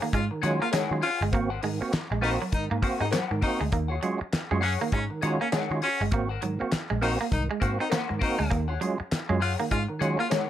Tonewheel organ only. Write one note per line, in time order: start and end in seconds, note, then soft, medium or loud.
0.02 0.13 D#3 medium
0.13 0.21 C#4 soft
0.13 0.21 F4 soft
0.31 0.43 D#3 medium
0.42 0.60 F#3 medium
0.42 0.60 G#3 medium
0.42 0.60 C#4 medium
0.42 0.60 F4 loud
0.73 0.90 D#3 medium
0.91 1.03 F#3 medium
0.91 1.03 G#3 medium
0.91 1.02 C#4 medium
0.91 1.02 F4 medium
1.03 1.10 C#4 soft
1.03 1.10 F4 soft
1.33 1.50 A#3 loud
1.33 1.50 C4 loud
1.33 1.50 F#4 loud
1.63 1.80 G#2 medium
1.63 1.80 D#3 medium
1.81 1.92 A#3 medium
1.81 1.92 C4 medium
1.81 1.92 F#4 medium
2.22 2.39 A#3 medium
2.22 2.39 C4 medium
2.22 2.40 F#4 medium
2.52 2.70 G#2 medium
2.52 2.69 D#3 medium
2.82 2.99 A#3 medium
2.82 3.00 C4 medium
2.82 3.00 F#4 loud
3.02 3.06 C4 soft
3.02 3.06 F#4 soft
3.13 3.20 C4 soft
3.13 3.20 F#4 soft
3.31 3.42 G#2 medium
3.31 3.42 D#3 medium
3.43 3.60 A#3 medium
3.43 3.60 C4 medium
3.43 3.60 F#4 loud
3.73 3.90 D#3 medium
3.91 3.96 F4 soft
3.91 3.96 F#4 soft
4.03 4.20 G#3 medium
4.03 4.20 C#4 medium
4.03 4.20 F4 medium
4.03 4.20 F#4 medium
4.51 4.62 G#3 medium
4.51 4.62 C#4 medium
4.51 4.62 F4 medium
4.51 4.62 F#4 medium
4.81 4.92 D#3 medium
4.93 5.00 F4 soft
4.93 5.00 F#4 soft
5.11 5.22 D#3 medium
5.22 5.39 G#3 medium
5.22 5.39 C#4 medium
5.22 5.39 F4 medium
5.22 5.39 F#4 medium
5.52 5.69 D#3 medium
5.70 5.81 G#3 medium
5.70 5.82 C#4 medium
5.70 5.81 F4 medium
5.70 5.81 F#4 medium
5.83 5.90 F4 soft
5.83 5.89 F#4 medium
6.11 6.29 A#3 loud
6.11 6.29 C4 medium
6.11 6.29 F#4 loud
6.42 6.59 G#2 medium
6.42 6.59 D#3 medium
6.60 6.71 A#3 medium
6.60 6.71 C4 medium
6.60 6.71 F#4 medium
7.01 7.19 A#3 medium
7.01 7.19 C4 medium
7.01 7.19 F#4 loud
7.31 7.48 G#2 medium
7.31 7.49 D#3 medium
7.61 7.78 A#3 medium
7.61 7.79 C4 medium
7.61 7.79 F#4 loud
7.80 7.85 C4 soft
7.80 7.84 F#4 soft
7.92 7.99 C4 soft
7.92 7.99 F#4 soft
8.09 8.21 G#2 medium
8.09 8.21 D#3 medium
8.21 8.38 A#3 medium
8.21 8.38 C4 medium
8.21 8.38 F#4 loud
8.51 8.68 D#3 medium
8.70 8.74 C#4 soft
8.70 8.74 F4 soft
8.81 8.98 F#3 medium
8.81 8.98 G#3 medium
8.81 8.98 C#4 medium
8.81 8.98 F4 medium
9.29 9.41 F#3 medium
9.29 9.41 G#3 medium
9.29 9.41 C#4 medium
9.29 9.41 F4 medium
9.60 9.71 D#3 medium
9.72 9.79 C#4 soft
9.72 9.79 F4 soft
9.89 10.01 D#3 medium
10.01 10.18 F#3 medium
10.01 10.18 G#3 medium
10.01 10.18 C#4 medium
10.01 10.18 F4 medium
10.31 10.48 D#3 medium